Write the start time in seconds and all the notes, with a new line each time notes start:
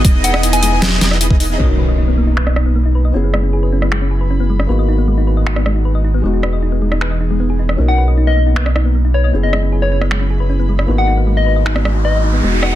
0.04 E1 G#3 B3 D#4 E4 D#5, kick, closed hi-hat
0.14 D#4
0.24 B4 F#5, closed hi-hat
0.34 D#5 F#5, cross-stick
0.43 D#4, closed hi-hat
0.53 B3 G#5, closed hi-hat
0.63 G#3, closed hi-hat
0.72 D#4
0.82 B4, snare, closed hi-hat
0.92 D#5
1.01 E1 B3 D#4 E4 G#4 D#5, snare, closed hi-hat
1.11 E4, cross-stick
1.21 E4, closed hi-hat
1.31 B3, kick
1.40 D#4, open hi-hat
1.50 B3
1.57 B1 A#3 B3 C#4 D#4 F#4 A#4, crash, impact
1.69 D#4
1.79 B4
1.89 D#5
1.98 D#4
2.08 B3
2.18 A#3
2.27 D#4
2.37 B4, finger snap
2.47 D#5, cross-stick
2.56 D#4, cross-stick
2.66 B3
2.76 A#3
2.86 D#4
2.95 B4
3.05 D#5
3.12 F#1 F#3 B3 C#4 E4 G#4 B5
3.24 B3
3.34 G#3, cross-stick
3.44 C#4
3.53 G#4
3.63 B4
3.73 C#4
3.82 B3, cross-stick
3.92 G#3, finger snap
4.02 C#4
4.11 G#4
4.21 B4
4.30 C#4
4.40 B3
4.50 G#3
4.60 C#4, cross-stick
4.67 G#1 G#3 A#3 B3 D#4 F#4 B4
4.71 F#4
4.79 D#5
4.89 D#4
4.98 B3
5.08 G#3
5.18 D#4
5.27 B4
5.37 D#5
5.47 D#4, finger snap
5.56 B3, cross-stick
5.66 G#3, cross-stick
5.76 D#4
5.85 B4
5.95 D#5
6.04 D#4
6.14 B3
6.22 E1 E3 G#3 B3 D#4 F#4 G#4
6.34 D#4
6.43 B4, cross-stick
6.53 D#5
6.63 D#4
6.72 B3
6.82 G#3
6.92 D#4, cross-stick
7.01 B4, finger snap
7.11 D#5
7.21 D#4
7.30 G#3
7.40 B3
7.50 G#4
7.59 D#4
7.69 B3, cross-stick
7.77 B1 A#3 C#4 D#4 F#4 A#4
7.88 D#4 F#5
7.98 B4
8.08 D#5
8.17 D#4
8.27 B3 D#5
8.37 A#3
8.47 D#4
8.56 B4, finger snap
8.66 D#5, cross-stick
8.76 D#4, cross-stick
8.85 B3
8.95 A#3
9.05 D#4
9.14 B4 C#5
9.24 C#5 D#5
9.31 F#1 F#3 B3 C#4 E4 G#4 B5
9.35 G#4
9.43 B3 D#5
9.53 G#3 D#5, cross-stick
9.63 C#4
9.72 G#4
9.82 B4 C#5
9.92 C#4 C#5
10.01 B3, cross-stick
10.11 G#3, finger snap
10.21 C#4
10.30 G#4
10.40 B4
10.50 C#4
10.59 B3
10.69 G#3
10.79 C#4, cross-stick
10.86 G#1 G#3 A#3 B3 D#4 F#4 B4, riser
10.90 F#4
10.98 D#5 F#5
11.08 D#4
11.17 B3
11.27 G#3
11.37 D#4 D#5
11.46 B4
11.56 D#5
11.66 D#4, finger snap
11.76 B3, cross-stick
11.85 G#3, cross-stick
11.95 D#4
12.04 B4 D#5
12.14 D#5
12.24 D#4
12.34 B3
12.41 E1 E3 G#3 B3 D#4 G#4
12.45 F#4
12.53 D#4
12.63 B4 F#5, cross-stick